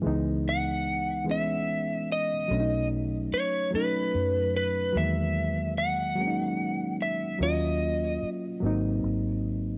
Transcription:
<<
  \new Staff \with { instrumentName = "Lead electric guitar" } { \time 6/8 \key cis \dorian \tempo 4. = 49 r8 fis''4 e''4 dis''8~ | dis''8 r8 cis''8 b'4 b'8 | e''4 fis''4. e''8 | dis''4 r2 | }
  \new Staff \with { instrumentName = "Reed electric piano" } { \time 6/8 \key cis \dorian <e gis b dis'>4. <e gis b cis'>4. | <fis a cis' d' dis'>4. <fis a cis' dis'>4. | <dis fis gis ais>4. <fis gis ais cis' dis'>4. | <fis ais cis' eis'>4. <fis ais bis dis'>4. | }
  \new Staff \with { instrumentName = "Fingered electric bass" } { \clef bass \time 6/8 \key cis \dorian cis,2. | b,,4 r4 fis,4 | e,2. | dis,4 r8 gis,,8 gis,,4 | }
>>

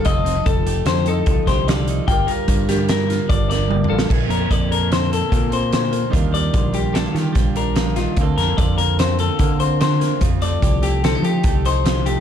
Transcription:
<<
  \new Staff \with { instrumentName = "Clean electric guitar" } { \time 5/4 \key bes \major \tempo 4 = 147 ees''4 a'4 c''8 a'4 c''8 d''4 | g''8 bes'4 g'8 bes'4 d''8 d''4 a'8 | r8 bes'8 d''8 bes'8 c''8 a'4 c''8 c''4 | r8 d''4 g'8 a'8 g'4 bes'4 f'8 |
r8 bes'8 d''8 bes'8 c''8 a'4 c''8 c''4 | r8 d''4 g'8 a'8 g'4 c''4 g'8 | }
  \new Staff \with { instrumentName = "Clean electric guitar" } { \time 5/4 \key bes \major << { a'8 c'16 ees'8. g'4 ees'4 g'8 a'8 ees'8 | <g f' bes' d''>8 f'4 bes'4 f'4 bes'8 d''8 f'8 | r4 a'4 c'8 a'4 c'4. | <g d' f' bes'>4 f'4 d'8 f'4 d'4. |
<bes c' f' a'>4 f'4 c'8 f'4 c'4.~ | c'4 g'4 c'16 ees'16 g'4 ees'4. | } \\ { <f g>4. a4. f4 f4 | g,4. g4. d4 g,4 | bes,8 bes4 bes4. bes4 bes,8 bes8 | ees8 g4 g4. g4 f8 ees8 |
d8 bes4 bes4. bes4 d8 bes8 | f8 a4 a4. a4 f8 a8 | } >> }
  \new Staff \with { instrumentName = "Fingered electric bass" } { \clef bass \time 5/4 \key bes \major f,,4 f,,4 f,4 c,16 r16 c,4. | g,,8 r8 g,2 g,,4. a,,8 | bes,,8 f,8 f,2 bes,2 | ees,4 bes,,4. ees8 bes,,2 |
d,8 f,8 f,2 d2 | f,4 c,4. f8 c,2 | }
  \new DrumStaff \with { instrumentName = "Drums" } \drummode { \time 5/4 <hh bd>8 hh8 <hh bd>8 hh8 <hh sn>8 hh8 <hh bd>8 <hh bd sn>8 <hh sn>8 hh8 | <hh bd>8 hh8 <hh bd>8 <hh sn>8 <hh sn>8 <hh sn>8 <hh bd>8 <hh sn>8 \tuplet 3/2 { tommh8 toml8 sn8 } | <cymc bd>8 hh8 <hh bd>8 hh8 <hh sn>8 hh8 <hh bd>8 hh8 <hh sn>8 hh8 | <hh bd>8 hh8 <hh bd>8 hh8 <hh sn>8 <hh sn>8 <hh bd sn>8 hh8 <hh sn>8 <hh sn>8 |
<hh bd>8 <hh sn>8 <hh bd>8 hh8 <hh sn>8 hh8 <hh bd>8 hh8 <hh sn>8 <hh sn>8 | <hh bd>8 hh8 <hh bd>8 hh8 <hh sn>8 hh8 <hh bd>8 hh8 <hh sn>8 hh8 | }
>>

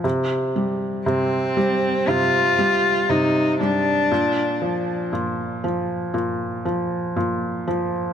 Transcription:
<<
  \new Staff \with { instrumentName = "Cello" } { \time 4/4 \key bes \major \tempo 4 = 59 r4 c'4 f'4 ees'8 d'8~ | d'4 r2. | }
  \new Staff \with { instrumentName = "Felt piano" } { \clef bass \time 4/4 \key bes \major c8 g8 c8 g8 c8 g8 c8 g8 | bes,8 f8 bes,8 f8 bes,8 f8 bes,8 f8 | }
>>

